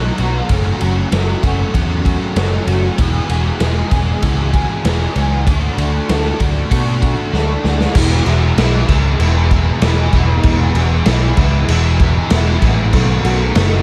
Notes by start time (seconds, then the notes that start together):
Already playing: F#3 B3 D#4 F#4
0.18 B1 B3 D#4 F#4, ride
0.49 F#1 F#2 C#3 F#3 A3 C#4 F#4, kick, ride
0.80 F#1 F#3 A3 C#4 F#4, ride
1.12 F#1 F#3 A3 C#4 F#4, snare, ride
1.43 F#1 F#3 A3 C#4 F#4, kick, snare, ride
1.73 E2 F#2 C#3 F#3 A3 C#4 F#4, kick, ride
2.04 F#3 A3 C#4 F#4, kick, ride
2.35 F#1 F#3 A3 C#4 F#4, snare, ride
2.67 F#1 F#3 A3 C#4 F#4, ride
2.98 E1 E2 B2 E3 G#3 B3 G#4, kick, ride
3.29 E1 E3 G#3 B3 G#4, ride
3.60 E1 E3 G#3 B3 G#4, snare, ride
3.91 E1 E3 G#3 B3 G#4, kick, snare, ride
4.22 C#2 E2 B2 E3 G#3 B3 G#4, kick, ride
4.53 E3 G#3 B3 G#4, kick, ride
4.84 E1 E3 G#3 B3 G#4, snare, ride
5.15 C#2 E3 G#3 B3 G#4, ride
5.46 D2 D3 A3 D4 F#4, kick, ride
5.77 D2 A3 D4 F#4, ride
6.08 D2 D3 A3 D4 F#4, snare, ride
6.39 D2 A3 D4 F#4, kick, ride
6.70 B2 D3 A3 D4 F#4, kick, ride
7.02 A3 D4 F#4, kick, ride
7.33 D2 D3 A3 D4 F#4, snare
7.64 D2 A3 D4 F#4, snare
7.81 snare
7.95 E1 E2 B2 E3 G#3 B3 E4, kick, crash
8.26 E1 E3 G#3 B3 E4, crash
8.57 B1 E3 G#3 B3 E4, snare, crash
8.87 C#2 E3 G#3 B3 E4, kick, crash
9.19 E1 E2 B2 E3 G#3 B3 E4, crash
9.51 E3 G#3 B3 E4, kick, crash
9.82 E1 E3 G#3 B3 E4, snare, crash
10.13 E1 E3 G#3 B3 E4, kick, crash
10.43 E1 E2 B2 E3 G#3 B3 E4, kick, crash
10.74 E1 E3 G#3 B3 E4, crash
11.06 B1 E3 G#3 B3 E4, snare, crash
11.37 C#2 E3 G#3 B3 E4, kick, crash
11.68 E1 E2 B2 E3 G#3 B3 E4, crash
12.00 E3 G#3 B3 E4, kick, crash
12.30 E1 E3 G#3 B3 E4, snare, crash
12.62 A1 E3 G#3 B3 E4, kick, crash
12.93 B1 B2 D#3 A3 B3 F#4, kick, crash
13.25 B1 A3 B3 F#4, crash
13.55 F#1 D#3 A3 B3 F#4, snare, crash